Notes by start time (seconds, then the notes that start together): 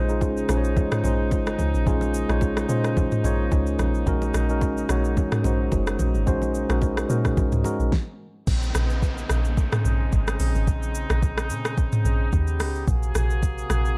Already playing: A#1 C#3 G#3 C#4 D#4 F4 C5
0.08 G#3 C#4 D#4 F4 G#4, shaker
0.21 kick, high bongo, shaker
0.37 shaker
0.48 A#1 G#3 C#4 D#4 F4 C5, cross-stick, shaker
0.57 C#5
0.64 shaker
0.77 kick, high bongo, low conga, shaker
0.92 cross-stick, mid tom, high bongo, shaker
1.03 A#1 G#3 C#4 D#4 F4 C5, low bongo, shaker
1.31 G#1, kick, high bongo, low bongo, shaker
1.47 cross-stick, shaker
1.59 C#2, low conga, shaker
1.74 A#1, shaker
1.86 A#1 G#3 A#3 C#4 D#4 F4 G#4, kick, low conga, shaker
2.01 low bongo, shaker
2.14 shaker
2.28 A#1 G#3 C#4 D#4 F4 C#5, cross-stick, shaker
2.41 kick, high bongo, shaker
2.57 cross-stick, shaker
2.68 A#2 G#3 C#4 D#4 F4 C5, shaker
2.84 cross-stick, shaker
2.97 kick, high bongo, low conga, shaker
3.12 mid tom, high bongo, shaker
3.23 A#1 G#3 C#4 D#4 F4 C#5, low bongo, shaker
3.52 C#2, kick, high bongo, low bongo, shaker
3.67 shaker
3.79 A#1, cross-stick, low conga, shaker
3.94 shaker
4.06 A#1 F#3 G#3 C#4 D#4 F#4 A#4, kick, low conga, shaker
4.22 low bongo, shaker
4.34 A#1, cross-stick, shaker
4.49 G#3 C#4 D#4 F#4 A#4, shaker
4.61 kick, high bongo, shaker
4.77 shaker
4.89 A#1 G#3 C#4 D#4 F#4 C#5, cross-stick, shaker
5.04 shaker
5.17 kick, high bongo, low conga, shaker
5.32 cross-stick, mid tom, high bongo, shaker
5.44 A#1 G#3 C#4 D#4 F#4 C5, low bongo, shaker
5.72 F#1, kick, high bongo, low bongo, shaker
5.87 cross-stick, shaker
5.99 A#1, low conga, shaker
6.15 G#1, shaker
6.26 A#1 G#3 C#4 D#4 F#4 C5, kick, low conga, shaker
6.42 low bongo, shaker
6.54 shaker
6.69 A#1 G#3 C#4 D#4 F#4 A#4, cross-stick, shaker
6.81 kick, high bongo, shaker
6.97 cross-stick, shaker
7.09 A#2 G#3 C#4 D#4 F#4 A#4, shaker
7.25 kick, cross-stick, shaker
7.37 A#1, kick, high bongo, low conga, shaker
7.52 C#2, mid tom, high bongo, shaker
7.64 G#3 C#4 D#4 F#4 A#4, low bongo, shaker
7.80 A#1, shaker
7.92 kick, snare
8.47 A#1 C#3 G#3 C4 D#4, kick, crash, downlifter, shaker
8.63 shaker
8.75 A#1, cross-stick, shaker
8.90 shaker
9.02 kick, shaker
9.18 shaker
9.29 A#1, cross-stick, shaker
9.45 shaker
9.57 kick, shaker
9.72 cross-stick, mid tom, shaker
9.85 A#1, shaker
10.12 G#1, kick, shaker
10.27 cross-stick, shaker
10.40 A#1, open hi-hat, shaker
10.55 G#1, shaker
10.67 A#1, kick, shaker
10.83 shaker
10.95 shaker
11.10 A#1, cross-stick, shaker
11.22 kick, shaker
11.38 cross-stick, shaker
11.50 A#2, shaker
11.65 cross-stick, shaker
11.78 kick, shaker
11.92 mid tom, shaker
12.05 A#1, shaker
12.32 D#2 B3 G4, kick, shaker
12.47 shaker
12.60 C#2, cross-stick, open hi-hat, shaker
12.75 shaker
12.88 A#1 C3 A#3 F#4 G#4, kick, shaker
13.03 shaker
13.15 A#1, cross-stick, shaker
13.30 shaker
13.43 kick, shaker
13.58 shaker
13.70 A#1, cross-stick, shaker
13.85 shaker